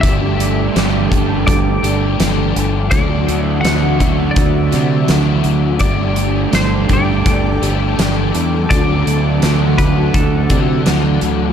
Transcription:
Already playing: D6
0.01 G1 G3 A3 D4 G4 A4 E5 G5, kick, closed hi-hat
0.40 closed hi-hat
0.74 G1 G3 A3 D4 G4, snare, closed hi-hat
1.10 G1 A3 D4 G4, kick, closed hi-hat
1.47 G1 D5, kick, closed hi-hat
1.83 G1 A3 D4 G4, closed hi-hat
2.18 G1 G3 A3 D4 G4, snare, closed hi-hat
2.56 G1, closed hi-hat
2.89 D2 D3 F#3 A3 D4 F#4 D5 E5, kick, closed hi-hat
3.29 D2, closed hi-hat
3.47 C5
3.61 D2 F#3 A3 D4 F#5, closed hi-hat
3.65 F#4, snare
3.99 A3 D4 F#4, kick, closed hi-hat
4.31 D5
4.36 D2, kick, closed hi-hat
4.71 C3 A3 D4 F#4, snare, closed hi-hat
5.07 D2 F#3 A3 D4 F#4, snare, closed hi-hat
5.44 D2, closed hi-hat
5.77 G1 G3 A3 D4 A4 D5 G5 D6, kick, closed hi-hat
5.82 G4
6.16 closed hi-hat
6.52 G1 G3 A3 D4 G4 C5, snare, closed hi-hat
6.89 G1 A3 D4 G4, kick, closed hi-hat
6.93 D5
7.26 G1, kick, closed hi-hat
7.62 G1 A3 D4 G4, closed hi-hat
7.97 G1 G3 A3 D4 G4, snare, closed hi-hat
8.35 E2, closed hi-hat
8.67 D2 D3 F#3 A3 D5 F#5, kick
8.71 D4 F#4, closed hi-hat
9.07 D2, closed hi-hat
9.42 D2 F#3 A3 D4 F#4, snare, closed hi-hat
9.78 A3 D4 F#4 B4, kick, closed hi-hat
10.14 D2 A4, kick, closed hi-hat
10.49 C3 A3 D4 F#4, kick, closed hi-hat
10.84 D2 F#3 A3 D4 F#4, snare, closed hi-hat
11.21 D2, closed hi-hat

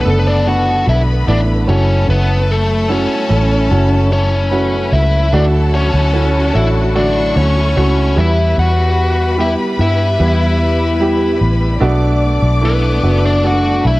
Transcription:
Already playing: B2 D3 A3 B3 D4 E4 F#4 A4 A5
0.01 A3 B3 B4
0.05 F#1 D4 A4
0.10 A4
0.19 B4
0.28 D4 D5
0.46 A3 B3 D4 F#4 F#5
0.87 B1 E4 B4 E5 B5
1.27 A1 A3 B3 D4 E4 D5
1.67 F#1 F#3 A3 C#4 E4 F#4 A4 C#5 A5
2.09 F#1 B3 B4
2.51 A3 A4
2.89 A3 C#4 E4 F#4 C#5
2.93 C#4
3.29 A1 A3 C#4 E4 A4
3.70 F#1 A3 C#4 E4 F#4
4.13 C#4 C#5
4.51 A3 C#4 E4 F#4 B4 B5
4.92 C#2 E4 E5
5.32 D2 D3 F#3 A3 D4 F#4 A4 D5 A5
5.75 C#4 C#5
5.94 D2
6.13 A3 C#4 E4 F#4
6.53 A1 A3 C#4 D4 E4 A4 E5
6.94 D3 A3 D4 F#4 A4 D5 C#6
7.36 D2 C#4 C#5
7.76 C#2 A3 C#4 F#4 C#5
8.16 E2 E3 G3 B3 E4 B4 E5 B5
8.58 E2 F#4 F#5
9.38 G3 B3 E4 G4 E5
9.42 E4
9.78 G2 G3 B3 E4 G4 E5
10.19 E2 G3 B3 E4 G4
11.00 G3 B3 E4 G4
11.41 A1
11.81 B1 B2 A3 B3 D4 F#4 D5 D6
12.43 B1
12.62 A3 B3 D4 E4 B4
13.03 F#1 A3 B3 D4 F#4
13.26 D4 D5
13.43 A3 B3 D4 F#4 F#5
13.84 B1 E4 B4 E5 B5

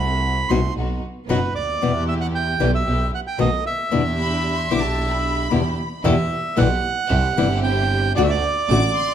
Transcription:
Already playing: C2 A3 C4 F#4 B5
0.49 C2 B2 F#3 A3 B3 C4 D#4 F#4 C6
0.76 B1 B3 D#4 F#4
1.28 F#1 B2 F#3 B3 D#4 F#4 B4
1.55 D2 D5
1.81 E2 B2 E3 G3 B3 E4 G4
2.08 E5
2.21 F#5
2.35 G5
2.60 B1 B2 E3 G3 B3 E4 G4
2.75 E5
2.86 B1 B3 E4 G4
3.15 F#5
3.27 G5
3.38 B1 B2 D#3 A3 B3 D#4 F#4 A4 D#5
3.66 E5
3.91 E2 B2 D3 G3 B3 D4 E4 G4
4.18 B5
4.58 C6
4.71 B1 B2 D3 G3 B3 D4 E4 G4 D6
4.84 A5
5.10 B5
5.51 E2 B2 D3 G3 B3 D4 E4 G4
6.04 E2 B2 E3 G3 B3 E4 G4 E5
6.57 B1 B2 E3 G3 B3 E4 G4 F#5
7.10 C2 C4 E4 G4
7.37 G1 C3 E3 G3 C4 E4 G4
7.63 G5
8.16 D2 D3 A3 D4 F#4 D5
8.24 E5
8.30 D5
8.69 A1 D3 A3 D4 F#4 D6
8.96 C6

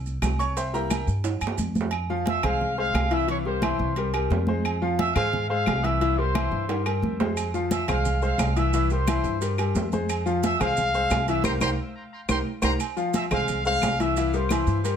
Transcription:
Already playing: C2
0.06 high conga, maracas
0.22 C2, high conga, low timbale, low agogo, claves, maracas
0.39 C#5 C#6, high conga, low agogo, maracas
0.57 C5 E5 G5 C6, high conga, low agogo, maracas
0.73 G3 A#3 E4 A#4 E5 G5 A#5, high conga, maracas
0.90 high conga, low timbale, low agogo, claves, maracas
1.07 G2, high conga, maracas
1.24 high conga, high timbale, low agogo, maracas
1.41 G2, high conga, low agogo, claves, maracas
1.47 low timbale
1.58 F2, high conga, maracas
1.75 high conga, maracas
1.81 low timbale
1.91 high conga, low agogo, claves
2.10 F3 F4 F5, high conga
2.26 E5 E6, high conga, low timbale, low agogo
2.43 C2 G#3 G#4 C5 F5, high conga, low conga, low agogo, claves
2.61 high conga, low conga
2.78 G#3 G#4 C5 F5, high conga
2.94 C2, high conga, low timbale, low agogo, claves
3.11 E3 E4 E5 E6, high conga, low agogo
3.28 E3 E4 C#5 E5 C#6, high conga, low agogo
3.45 G3 G4 A#4 C5 C6, high conga
3.62 E3 E4 E5, high conga, low timbale, low agogo, claves
3.79 C2, high conga
3.96 G3 G4 A#4, high conga, low agogo
4.14 G3 G4 A#4, high conga, low agogo, claves
4.30 F2, high conga, low timbale
4.47 G#3 G#4 C5, high conga
4.65 high conga, low agogo, claves
4.82 F3 F4 F5, high conga
4.98 E5 E6, high conga, low timbale, low agogo
5.14 G#2 G#3 G#4 C5 F5, high conga, low conga, low agogo, claves
5.33 high conga, low conga
5.49 G#3 G#4 C5 F5, high conga
5.66 C2, high conga, low timbale, low agogo, claves
5.83 E3 E4 E5 E6, high conga, low agogo
6.01 E3 E4 E5, high conga, low agogo
6.18 G3 G4 A#4 C5 C6, high conga
6.34 E3 E4 E5, high conga, low timbale, low agogo, claves
6.51 G2, high conga
6.68 G3 G4 A#4, high conga, high timbale, low agogo
6.85 G3 G4 A#4, high conga, low agogo, claves
7.02 F2, high conga
7.20 G#3 G#4 C5, high conga, low timbale
7.37 high conga, low agogo, claves, maracas
7.54 F3 F4 F5, high conga, maracas
7.71 E5 E6, high conga, low timbale, low agogo, maracas
7.88 C2 G#3 G#4 C5 F5, high conga, low conga, low agogo, claves, maracas
8.05 high conga, low conga, maracas
8.22 G#3 G#4 C5 F5, high conga, maracas
8.38 C2, high conga, low timbale, low agogo, claves, maracas
8.56 E3 E4 E5 E6, high conga, low agogo, maracas
8.73 E3 E4 E5, high conga, low agogo, maracas
8.90 G3 G4 A#4 C5 C6, high conga, maracas
9.07 E3 E4 E5, high conga, low timbale, low agogo, claves, maracas
9.24 G2, high conga, maracas
9.41 G3 G4 A#4, high conga, low agogo, maracas
9.58 G3 G4 A#4, high conga, low agogo, claves, maracas
9.75 F2, high conga, low timbale, maracas
9.92 G#3 G#4 C5, high conga, maracas
10.09 high conga, low agogo, claves, maracas
10.26 F3 F4 F5, high conga, maracas
10.43 E5 E6, high conga, low timbale, low agogo, maracas
10.60 C2 G#3 G#4 C5 F5, high conga, low conga, low agogo, claves, maracas
10.77 high conga, low conga, maracas
10.94 G#3 G#4 C5, high conga, maracas
11.10 C2, high conga, low timbale, low agogo, claves, maracas
11.28 E3 E4 E5 E6, high conga, low agogo, maracas
11.44 C2 G4 A#4 C5 G5 A#5 C6, high conga, high timbale, claves, maracas
11.60 C2 G4 A#4 C5 G5 A#5 C6, high conga, high timbale, claves, maracas
12.28 C2 G4 A#4 C5 G5 A#5 C6, high conga, high timbale, claves, maracas
12.62 C2 G4 A#4 C5 G5 A#5 C6, high conga, high timbale, claves, maracas
12.80 high conga, low agogo, claves, maracas
12.96 F3 F4 F5, high conga, maracas
13.14 E5 E6, high conga, low timbale, low agogo, maracas
13.31 C2 G#3 G#4 C5 F5, high conga, low conga, low agogo, claves, maracas
13.48 high conga, low conga, maracas
13.65 G#3 G#4 C5 F5, high conga, maracas
13.82 C2, high conga, low timbale, low agogo, claves, maracas
14.00 E3 E4 E5 E6, high conga, low agogo, maracas
14.17 E3 E4 E5, high conga, low agogo, maracas
14.34 G3 G4 A#4 C5 C6, high conga, maracas
14.49 E3 E4 E5, high conga, low timbale, low agogo, claves, maracas
14.67 G2, high conga, maracas
14.84 G3 G4 A#4, high conga, low agogo, maracas

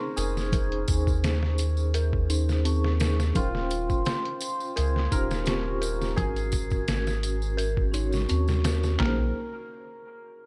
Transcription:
Already playing: C4 C#4 D#4 G#4 A#4 C5 C#6
0.16 F1 G#4 A#4, closed hi-hat, tambourine
0.37 snare, tambourine
0.52 D#4 G#4 A#4, kick, closed hi-hat, tambourine, low conga
0.57 C5
0.72 closed hi-hat
0.88 D#2, kick, closed hi-hat, tambourine
1.07 kick, tambourine
1.24 snare, closed hi-hat, tambourine
1.43 snare
1.58 closed hi-hat, tambourine
1.77 tambourine
1.94 A#4, closed hi-hat, tambourine
2.13 kick
2.29 C#4 D#4 G#4 C5, closed hi-hat, tambourine
2.49 snare, tambourine
2.65 C4 D#4 G#4 C#6, closed hi-hat, tambourine
2.84 snare
3.00 A#4, snare, closed hi-hat, tambourine
3.20 snare, tambourine
3.33 D#1 C#4 F4 A#4 G5, kick, closed hi-hat, tambourine, low conga
3.39 C5
3.55 snare
3.70 closed hi-hat, tambourine
3.90 kick, tambourine
4.05 C5, snare, closed hi-hat, tambourine
4.25 closed hi-hat
4.41 closed hi-hat, tambourine
4.60 tambourine
4.76 C#2 G#4 A#4, closed hi-hat, tambourine
4.96 snare
5.11 D#1 C#4 D#4 F4 G4 A#4 C5, kick, closed hi-hat, tambourine
5.31 snare, tambourine
5.46 C4 F4 G4 C#6, snare, closed hi-hat, tambourine
5.81 A#4, closed hi-hat, tambourine
6.01 snare, tambourine
6.14 G#1 C#4 F#4 G#4 A#4, kick, closed hi-hat, tambourine, low conga
6.20 A#4
6.36 closed hi-hat, tambourine
6.52 kick, closed hi-hat, tambourine
6.71 kick, tambourine
6.88 snare, closed hi-hat, tambourine
7.07 snare, tambourine
7.23 closed hi-hat, tambourine
7.42 tambourine
7.57 A#4, closed hi-hat, tambourine
7.77 kick
7.92 C#4 D#4 F#4 C#5, closed hi-hat, tambourine
8.12 F#4 C#6, snare, tambourine
8.29 D#2 C4, closed hi-hat, tambourine
8.48 snare, tambourine
8.64 A#4, snare, closed hi-hat, tambourine
8.83 snare, tambourine
8.95 C#4 D#4 A#4
9.00 A#1 A#3 G#4, snare, clap, floor tom
9.04 C5

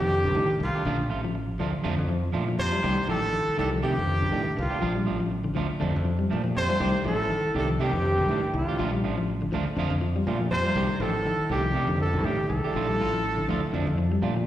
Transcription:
Already playing: G2 G4
0.00 F2 D#3, muted clean electric guitar stroke
0.12 muted clean electric guitar stroke
0.24 C2 D3
0.35 A2 D#3 D4 G4, muted clean electric guitar stroke
0.50 muted clean electric guitar stroke
0.59 C2 D#3 F4, muted clean electric guitar stroke
0.63 F2 F4
0.75 A3 D4 G4
0.85 A#1 D3 F3 A3 D4 F4
0.99 muted clean electric guitar stroke
1.10 A1 F3 A3 F4, muted clean electric guitar stroke
1.24 F3, muted clean electric guitar stroke
1.35 muted clean electric guitar stroke
1.59 D2 F3 A3 D4 F4
1.73 muted clean electric guitar stroke
1.84 F2 D3 F3 A3 D4 F4
1.97 F2, muted clean electric guitar stroke
2.08 F3, muted clean electric guitar stroke
2.33 A#2 F3 A3 D4 F4
2.47 F3, muted clean electric guitar stroke
2.58 F2 C3 C5, muted clean electric guitar stroke
2.72 G3 A3 D4 F4
2.82 C2 D#3 G3 A3 D4 G4
2.97 muted clean electric guitar stroke
3.08 A1 A2 D#3 F3 A3 D4 G4 A4
3.22 muted clean electric guitar stroke
3.32 D#3, muted clean electric guitar stroke
3.48 muted fingered electric bass stroke
3.57 C2 A2 D#3 A3 D4 G4 A4
3.72 F3, muted clean electric guitar stroke
3.82 G2 C3 D#3 A3 G4, muted clean electric guitar stroke
3.96 F2 D#3, muted clean electric guitar stroke
4.07 muted clean electric guitar stroke
4.22 C2 D3
4.31 A2 D#3 A3 D4 G4
4.45 muted clean electric guitar stroke
4.57 C2 F2 F4, muted clean electric guitar stroke
4.70 A3 D4 G4
4.81 A#1 F3 D4 F4, muted clean electric guitar stroke
4.95 G3, muted clean electric guitar stroke
5.06 A1 F3 A3 D4 F4
5.20 F3, muted clean electric guitar stroke
5.31 muted clean electric guitar stroke
5.44 D3
5.55 D2 F3 A3 D4 F4
5.69 muted clean electric guitar stroke
5.80 F2 D3 F3 A3 D4, muted clean electric guitar stroke
5.95 F2, muted clean electric guitar stroke
6.05 F3, muted clean electric guitar stroke
6.19 G3
6.30 A#2 F3 A3 D4
6.44 F3, muted clean electric guitar stroke
6.55 F2 C3 C5, muted clean electric guitar stroke
6.68 G3 A3 D4 F4
6.80 C2 D#3 G3 A3 D4 G4
6.93 muted clean electric guitar stroke
7.04 A1 A2 F3 A3 D4 A4, muted clean electric guitar stroke
7.19 muted clean electric guitar stroke
7.30 D#3, muted clean electric guitar stroke
7.45 muted fingered electric bass stroke
7.54 C2 A2 D#3 A3 D4 G4 A4
7.59 A4
7.68 F3, muted clean electric guitar stroke
7.79 G2 C3 D#3 A3 D4 G4
7.93 F2 D#3, muted clean electric guitar stroke
8.05 muted clean electric guitar stroke
8.18 C2 D3
8.28 A2 D#3 A3 D4 G4
8.44 muted clean electric guitar stroke
8.54 C2 F2 D#3 F4, muted clean electric guitar stroke
8.69 A3 D4 G4
8.79 A#1 F3 A3 D4 F4
8.92 G3, muted clean electric guitar stroke
9.03 A1 F3 A3 D4 F4
9.18 F3, muted clean electric guitar stroke
9.29 muted clean electric guitar stroke
9.42 D3
9.52 D2 F3 A3 D4 F4
9.67 muted clean electric guitar stroke
9.77 F2 D3 F3 A3 D4 F4
9.90 F2, muted clean electric guitar stroke
10.01 F3, muted clean electric guitar stroke
10.16 G3
10.27 A#2 F3 A3 D4 F4
10.40 F3, muted clean electric guitar stroke
10.51 F2 C3 C5, muted clean electric guitar stroke
10.65 G3 A3 D4 F4
10.75 C2 D#3 G3 A3 D4 G4
10.90 muted clean electric guitar stroke
11.00 A1 A2 D#3 F3 A3 D4 G4 A4
11.15 muted clean electric guitar stroke
11.26 D#3, muted clean electric guitar stroke
11.39 muted fingered electric bass stroke
11.50 C2 G2 D#3 A3 D4 G4
11.64 F3, muted clean electric guitar stroke
11.73 C3 D#3 A3 D4 G4
11.87 F2 D3, muted clean electric guitar stroke
12.00 A2 A4, muted clean electric guitar stroke
12.14 C2 D3
12.24 G2 A2 D#3 A3 D4 G4
12.40 muted clean electric guitar stroke
12.49 C2 A2 D#3 A4, muted clean electric guitar stroke
12.64 A3 D4 G4, muted fingered electric bass stroke
12.74 A#1 F3 A3 D4 F4
12.89 G3, muted clean electric guitar stroke
13.00 A1 F3 F4, muted clean electric guitar stroke
13.13 F3, muted clean electric guitar stroke
13.24 muted clean electric guitar stroke
13.37 D3
13.48 D2 F3 A3 D4 F4
13.63 muted clean electric guitar stroke
13.73 F2 D3 F3 A3 D4, muted clean electric guitar stroke
13.87 F2, muted clean electric guitar stroke
13.98 F3, muted clean electric guitar stroke
14.12 G3
14.22 A#2 A3 D4 F4, muted clean electric guitar stroke
14.36 F3, muted clean electric guitar stroke

